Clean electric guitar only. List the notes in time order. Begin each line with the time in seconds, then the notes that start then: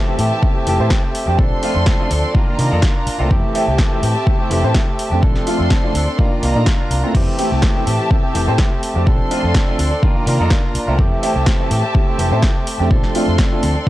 Already playing: E3 A3 C4 G4
0.18 E3 A3 C4 G4
0.55 A3 C4 G4
0.66 E3 A3 C4 G4
0.90 E3 A3 C4 G4
1.03 A3 C4 G4
1.27 A3 C4 G4
1.38 F3 C4 D4 A4
1.75 C4 D4 A4
1.86 F3 C4 D4 A4
2.10 F3 C4 D4 A4
2.34 D#3 A#3 D4 F4
2.47 A#3 D4 F4
2.58 D#3 A#3 D4 F4
2.82 D#3 A#3 D4 F4
2.95 A#3 D4 F4
3.19 A#3 D4 F4
3.30 E3 A3 C4 G4
3.67 A3 C4 G4
3.78 E3 A3 C4 G4
4.02 E3 A3 C4 G4
4.15 A3 C4 G4
4.39 A3 C4 G4
4.50 E3 A3 C4 G4
4.74 E3 A3 C4 G4
4.87 A3 C4 G4
5.11 A3 C4 G4
5.22 F3 C4 D4 A4
5.59 C4 D4 A4
5.71 F3 C4 D4 A4
5.94 F3 C4 D4 A4
6.07 C4 D4 A4
6.19 D#3 A#3 D4 F4
6.31 A#3 D4 F4
6.42 D#3 A#3 D4 F4
6.67 D#3 A#3 D4 F4
6.79 A#3 D4 F4
7.04 A#3 D4 F4
7.15 E3 A3 C4 G4
7.51 A3 C4 G4
7.62 E3 A3 C4 G4
7.86 E3 A3 C4 G4
8.23 A3 C4 G4
8.34 E3 A3 C4 G4
8.47 A3 C4 G4
8.58 E3 A3 C4 G4
8.71 A3 C4 G4
8.95 A3 C4 G4
9.06 F3 C4 D4 A4
9.43 C4 D4 A4
9.54 F3 C4 D4 A4
9.78 F3 C4 D4 A4
9.91 C4 D4 A4
10.02 D#3 A#3 D4 F4
10.15 A#3 D4 F4
10.26 D#3 A#3 D4 F4
10.39 A#3 D4 F4
10.50 D#3 A#3 D4 F4
10.63 A#3 D4 F4
10.87 A#3 D4 F4
10.98 E3 A3 C4 G4
11.35 A3 C4 G4
11.46 E3 A3 C4 G4
11.70 E3 A3 C4 G4
11.83 A3 C4 G4
12.07 A3 C4 G4
12.18 E3 A3 C4 G4
12.31 A3 C4 G4
12.42 E3 A3 C4 G4
12.55 A3 C4 G4
12.79 A3 C4 G4
12.90 F3 C4 D4 A4
13.27 C4 D4 A4
13.38 F3 C4 D4 A4
13.62 F3 C4 D4 A4
13.75 C4 D4 A4